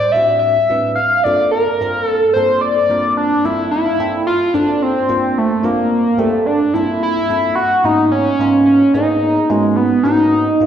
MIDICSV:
0, 0, Header, 1, 3, 480
1, 0, Start_track
1, 0, Tempo, 550459
1, 848, Time_signature, 6, 3, 24, 8
1, 9298, End_track
2, 0, Start_track
2, 0, Title_t, "Analog synth lead"
2, 0, Program_c, 0, 81
2, 0, Note_on_c, 0, 74, 94
2, 102, Note_on_c, 0, 76, 92
2, 116, Note_off_c, 0, 74, 0
2, 337, Note_off_c, 0, 76, 0
2, 342, Note_on_c, 0, 76, 98
2, 801, Note_off_c, 0, 76, 0
2, 833, Note_on_c, 0, 77, 96
2, 1078, Note_on_c, 0, 74, 89
2, 1091, Note_off_c, 0, 77, 0
2, 1315, Note_off_c, 0, 74, 0
2, 1321, Note_on_c, 0, 70, 92
2, 1791, Note_off_c, 0, 70, 0
2, 1791, Note_on_c, 0, 69, 92
2, 2010, Note_off_c, 0, 69, 0
2, 2036, Note_on_c, 0, 72, 83
2, 2265, Note_off_c, 0, 72, 0
2, 2278, Note_on_c, 0, 74, 84
2, 2730, Note_off_c, 0, 74, 0
2, 2767, Note_on_c, 0, 62, 89
2, 3007, Note_on_c, 0, 64, 94
2, 3020, Note_off_c, 0, 62, 0
2, 3232, Note_off_c, 0, 64, 0
2, 3237, Note_on_c, 0, 64, 97
2, 3689, Note_off_c, 0, 64, 0
2, 3722, Note_on_c, 0, 65, 103
2, 3949, Note_off_c, 0, 65, 0
2, 3960, Note_on_c, 0, 62, 89
2, 4205, Note_on_c, 0, 60, 100
2, 4218, Note_off_c, 0, 62, 0
2, 4691, Note_on_c, 0, 57, 87
2, 4704, Note_off_c, 0, 60, 0
2, 4924, Note_on_c, 0, 58, 85
2, 4937, Note_off_c, 0, 57, 0
2, 5396, Note_on_c, 0, 57, 86
2, 5409, Note_off_c, 0, 58, 0
2, 5634, Note_on_c, 0, 62, 92
2, 5647, Note_off_c, 0, 57, 0
2, 5874, Note_on_c, 0, 64, 95
2, 5887, Note_off_c, 0, 62, 0
2, 6121, Note_off_c, 0, 64, 0
2, 6129, Note_on_c, 0, 64, 112
2, 6575, Note_off_c, 0, 64, 0
2, 6586, Note_on_c, 0, 66, 114
2, 6844, Note_on_c, 0, 63, 101
2, 6857, Note_off_c, 0, 66, 0
2, 7071, Note_off_c, 0, 63, 0
2, 7076, Note_on_c, 0, 61, 113
2, 7528, Note_off_c, 0, 61, 0
2, 7550, Note_on_c, 0, 61, 89
2, 7781, Note_off_c, 0, 61, 0
2, 7797, Note_on_c, 0, 63, 99
2, 8280, Note_on_c, 0, 56, 87
2, 8294, Note_off_c, 0, 63, 0
2, 8511, Note_on_c, 0, 59, 95
2, 8524, Note_off_c, 0, 56, 0
2, 8745, Note_off_c, 0, 59, 0
2, 8750, Note_on_c, 0, 63, 104
2, 9264, Note_off_c, 0, 63, 0
2, 9298, End_track
3, 0, Start_track
3, 0, Title_t, "Tine electric piano"
3, 0, Program_c, 1, 4
3, 128, Note_on_c, 1, 60, 54
3, 129, Note_on_c, 1, 45, 62
3, 129, Note_on_c, 1, 55, 58
3, 132, Note_on_c, 1, 62, 54
3, 134, Note_on_c, 1, 64, 57
3, 135, Note_on_c, 1, 66, 65
3, 485, Note_off_c, 1, 45, 0
3, 485, Note_off_c, 1, 60, 0
3, 486, Note_off_c, 1, 55, 0
3, 487, Note_off_c, 1, 62, 0
3, 488, Note_off_c, 1, 64, 0
3, 489, Note_off_c, 1, 66, 0
3, 606, Note_on_c, 1, 45, 58
3, 607, Note_on_c, 1, 55, 51
3, 608, Note_on_c, 1, 62, 52
3, 609, Note_on_c, 1, 60, 53
3, 611, Note_on_c, 1, 64, 49
3, 619, Note_on_c, 1, 71, 62
3, 847, Note_off_c, 1, 45, 0
3, 848, Note_off_c, 1, 55, 0
3, 848, Note_off_c, 1, 62, 0
3, 849, Note_off_c, 1, 60, 0
3, 850, Note_off_c, 1, 64, 0
3, 854, Note_off_c, 1, 71, 0
3, 1091, Note_on_c, 1, 43, 65
3, 1092, Note_on_c, 1, 58, 56
3, 1095, Note_on_c, 1, 60, 55
3, 1100, Note_on_c, 1, 62, 61
3, 1101, Note_on_c, 1, 65, 57
3, 1101, Note_on_c, 1, 69, 70
3, 1447, Note_off_c, 1, 43, 0
3, 1447, Note_off_c, 1, 58, 0
3, 1449, Note_off_c, 1, 60, 0
3, 1451, Note_off_c, 1, 62, 0
3, 1452, Note_off_c, 1, 65, 0
3, 1452, Note_off_c, 1, 69, 0
3, 1569, Note_on_c, 1, 43, 63
3, 1573, Note_on_c, 1, 58, 55
3, 1578, Note_on_c, 1, 60, 61
3, 1580, Note_on_c, 1, 62, 59
3, 1584, Note_on_c, 1, 70, 68
3, 1585, Note_on_c, 1, 65, 62
3, 1926, Note_off_c, 1, 43, 0
3, 1928, Note_off_c, 1, 58, 0
3, 1930, Note_off_c, 1, 60, 0
3, 1932, Note_off_c, 1, 62, 0
3, 1933, Note_off_c, 1, 70, 0
3, 1934, Note_off_c, 1, 65, 0
3, 2058, Note_on_c, 1, 43, 63
3, 2059, Note_on_c, 1, 60, 57
3, 2059, Note_on_c, 1, 62, 57
3, 2061, Note_on_c, 1, 58, 58
3, 2064, Note_on_c, 1, 65, 58
3, 2068, Note_on_c, 1, 69, 71
3, 2410, Note_off_c, 1, 43, 0
3, 2411, Note_off_c, 1, 60, 0
3, 2411, Note_off_c, 1, 62, 0
3, 2412, Note_off_c, 1, 58, 0
3, 2414, Note_off_c, 1, 65, 0
3, 2416, Note_off_c, 1, 69, 0
3, 2522, Note_on_c, 1, 58, 61
3, 2523, Note_on_c, 1, 43, 63
3, 2529, Note_on_c, 1, 60, 63
3, 2532, Note_on_c, 1, 62, 59
3, 2533, Note_on_c, 1, 65, 62
3, 2536, Note_on_c, 1, 70, 71
3, 2883, Note_off_c, 1, 43, 0
3, 2883, Note_off_c, 1, 58, 0
3, 2886, Note_off_c, 1, 60, 0
3, 2888, Note_off_c, 1, 62, 0
3, 2888, Note_off_c, 1, 65, 0
3, 2890, Note_off_c, 1, 70, 0
3, 3001, Note_on_c, 1, 43, 76
3, 3004, Note_on_c, 1, 58, 61
3, 3005, Note_on_c, 1, 60, 72
3, 3007, Note_on_c, 1, 62, 67
3, 3010, Note_on_c, 1, 65, 63
3, 3013, Note_on_c, 1, 69, 78
3, 3251, Note_on_c, 1, 74, 56
3, 3362, Note_off_c, 1, 43, 0
3, 3362, Note_off_c, 1, 74, 0
3, 3363, Note_off_c, 1, 58, 0
3, 3363, Note_on_c, 1, 77, 54
3, 3364, Note_off_c, 1, 60, 0
3, 3365, Note_off_c, 1, 62, 0
3, 3367, Note_off_c, 1, 65, 0
3, 3368, Note_off_c, 1, 69, 0
3, 3477, Note_on_c, 1, 43, 66
3, 3478, Note_off_c, 1, 77, 0
3, 3483, Note_on_c, 1, 62, 62
3, 3485, Note_on_c, 1, 60, 57
3, 3487, Note_on_c, 1, 58, 64
3, 3488, Note_on_c, 1, 65, 58
3, 3489, Note_on_c, 1, 69, 78
3, 3490, Note_on_c, 1, 79, 58
3, 3713, Note_off_c, 1, 79, 0
3, 3723, Note_off_c, 1, 43, 0
3, 3726, Note_off_c, 1, 62, 0
3, 3727, Note_off_c, 1, 60, 0
3, 3728, Note_off_c, 1, 58, 0
3, 3729, Note_off_c, 1, 65, 0
3, 3729, Note_off_c, 1, 69, 0
3, 3954, Note_on_c, 1, 43, 66
3, 3958, Note_on_c, 1, 58, 55
3, 3958, Note_on_c, 1, 62, 56
3, 3960, Note_on_c, 1, 60, 56
3, 3964, Note_on_c, 1, 65, 57
3, 3968, Note_on_c, 1, 69, 74
3, 4319, Note_off_c, 1, 43, 0
3, 4320, Note_off_c, 1, 58, 0
3, 4321, Note_off_c, 1, 62, 0
3, 4322, Note_off_c, 1, 60, 0
3, 4324, Note_off_c, 1, 65, 0
3, 4326, Note_off_c, 1, 69, 0
3, 4433, Note_on_c, 1, 43, 68
3, 4436, Note_on_c, 1, 60, 66
3, 4439, Note_on_c, 1, 58, 61
3, 4440, Note_on_c, 1, 65, 56
3, 4442, Note_on_c, 1, 62, 60
3, 4445, Note_on_c, 1, 72, 78
3, 4798, Note_off_c, 1, 43, 0
3, 4800, Note_off_c, 1, 60, 0
3, 4801, Note_off_c, 1, 58, 0
3, 4802, Note_off_c, 1, 65, 0
3, 4803, Note_off_c, 1, 62, 0
3, 4804, Note_off_c, 1, 72, 0
3, 4912, Note_on_c, 1, 43, 72
3, 4914, Note_on_c, 1, 58, 65
3, 4914, Note_on_c, 1, 60, 64
3, 4916, Note_on_c, 1, 62, 68
3, 4921, Note_on_c, 1, 70, 78
3, 4922, Note_on_c, 1, 65, 62
3, 5278, Note_off_c, 1, 43, 0
3, 5278, Note_off_c, 1, 58, 0
3, 5278, Note_off_c, 1, 60, 0
3, 5280, Note_off_c, 1, 62, 0
3, 5282, Note_off_c, 1, 65, 0
3, 5282, Note_off_c, 1, 70, 0
3, 5384, Note_on_c, 1, 43, 71
3, 5388, Note_on_c, 1, 58, 63
3, 5392, Note_on_c, 1, 60, 63
3, 5395, Note_on_c, 1, 62, 61
3, 5397, Note_on_c, 1, 65, 64
3, 5399, Note_on_c, 1, 67, 76
3, 5754, Note_off_c, 1, 43, 0
3, 5756, Note_off_c, 1, 58, 0
3, 5758, Note_off_c, 1, 60, 0
3, 5759, Note_off_c, 1, 62, 0
3, 5760, Note_off_c, 1, 65, 0
3, 5761, Note_off_c, 1, 67, 0
3, 5879, Note_on_c, 1, 43, 67
3, 5886, Note_on_c, 1, 60, 62
3, 5888, Note_on_c, 1, 58, 64
3, 5890, Note_on_c, 1, 69, 72
3, 5891, Note_on_c, 1, 65, 63
3, 5892, Note_on_c, 1, 62, 59
3, 6241, Note_off_c, 1, 43, 0
3, 6245, Note_off_c, 1, 58, 0
3, 6245, Note_off_c, 1, 60, 0
3, 6246, Note_off_c, 1, 69, 0
3, 6247, Note_off_c, 1, 62, 0
3, 6247, Note_off_c, 1, 65, 0
3, 6361, Note_on_c, 1, 43, 66
3, 6362, Note_on_c, 1, 58, 58
3, 6364, Note_on_c, 1, 60, 55
3, 6366, Note_on_c, 1, 62, 55
3, 6366, Note_on_c, 1, 65, 52
3, 6372, Note_on_c, 1, 69, 69
3, 6605, Note_off_c, 1, 43, 0
3, 6606, Note_off_c, 1, 58, 0
3, 6607, Note_off_c, 1, 60, 0
3, 6608, Note_off_c, 1, 62, 0
3, 6608, Note_off_c, 1, 65, 0
3, 6610, Note_off_c, 1, 69, 0
3, 6835, Note_on_c, 1, 44, 68
3, 6837, Note_on_c, 1, 58, 60
3, 6838, Note_on_c, 1, 59, 62
3, 6843, Note_on_c, 1, 61, 61
3, 6846, Note_on_c, 1, 66, 79
3, 6847, Note_on_c, 1, 63, 65
3, 7199, Note_off_c, 1, 44, 0
3, 7200, Note_off_c, 1, 58, 0
3, 7200, Note_off_c, 1, 59, 0
3, 7203, Note_off_c, 1, 61, 0
3, 7204, Note_off_c, 1, 66, 0
3, 7205, Note_off_c, 1, 63, 0
3, 7316, Note_on_c, 1, 44, 73
3, 7320, Note_on_c, 1, 59, 62
3, 7323, Note_on_c, 1, 58, 63
3, 7330, Note_on_c, 1, 61, 63
3, 7331, Note_on_c, 1, 65, 75
3, 7332, Note_on_c, 1, 63, 65
3, 7679, Note_off_c, 1, 44, 0
3, 7681, Note_off_c, 1, 59, 0
3, 7682, Note_off_c, 1, 58, 0
3, 7686, Note_off_c, 1, 61, 0
3, 7687, Note_off_c, 1, 63, 0
3, 7687, Note_off_c, 1, 65, 0
3, 7796, Note_on_c, 1, 44, 66
3, 7797, Note_on_c, 1, 58, 64
3, 7800, Note_on_c, 1, 59, 63
3, 7804, Note_on_c, 1, 63, 63
3, 7808, Note_on_c, 1, 61, 63
3, 7808, Note_on_c, 1, 68, 73
3, 8159, Note_off_c, 1, 44, 0
3, 8159, Note_off_c, 1, 58, 0
3, 8161, Note_off_c, 1, 59, 0
3, 8163, Note_off_c, 1, 63, 0
3, 8165, Note_off_c, 1, 61, 0
3, 8165, Note_off_c, 1, 68, 0
3, 8280, Note_on_c, 1, 44, 64
3, 8280, Note_on_c, 1, 58, 62
3, 8282, Note_on_c, 1, 59, 58
3, 8285, Note_on_c, 1, 63, 62
3, 8287, Note_on_c, 1, 61, 62
3, 8292, Note_on_c, 1, 66, 74
3, 8641, Note_off_c, 1, 44, 0
3, 8641, Note_off_c, 1, 58, 0
3, 8642, Note_off_c, 1, 59, 0
3, 8643, Note_off_c, 1, 63, 0
3, 8644, Note_off_c, 1, 61, 0
3, 8647, Note_off_c, 1, 66, 0
3, 8758, Note_on_c, 1, 44, 71
3, 8762, Note_on_c, 1, 58, 57
3, 8764, Note_on_c, 1, 59, 62
3, 8764, Note_on_c, 1, 61, 58
3, 8768, Note_on_c, 1, 66, 71
3, 8772, Note_on_c, 1, 63, 59
3, 9120, Note_off_c, 1, 44, 0
3, 9122, Note_off_c, 1, 58, 0
3, 9123, Note_off_c, 1, 59, 0
3, 9123, Note_off_c, 1, 61, 0
3, 9125, Note_off_c, 1, 66, 0
3, 9127, Note_off_c, 1, 63, 0
3, 9245, Note_on_c, 1, 44, 63
3, 9246, Note_on_c, 1, 59, 53
3, 9248, Note_on_c, 1, 58, 54
3, 9248, Note_on_c, 1, 61, 53
3, 9255, Note_on_c, 1, 63, 53
3, 9258, Note_on_c, 1, 65, 70
3, 9298, Note_off_c, 1, 44, 0
3, 9298, Note_off_c, 1, 58, 0
3, 9298, Note_off_c, 1, 59, 0
3, 9298, Note_off_c, 1, 61, 0
3, 9298, Note_off_c, 1, 63, 0
3, 9298, Note_off_c, 1, 65, 0
3, 9298, End_track
0, 0, End_of_file